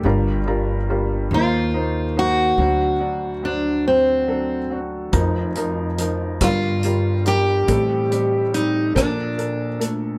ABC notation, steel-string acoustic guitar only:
X:1
M:6/8
L:1/8
Q:3/8=47
K:Gm
V:1 name="Steel-string acoustic guitar"
z3 F2 ^F- | ^F2 D C2 z | z3 F2 G- | G2 E D2 z |]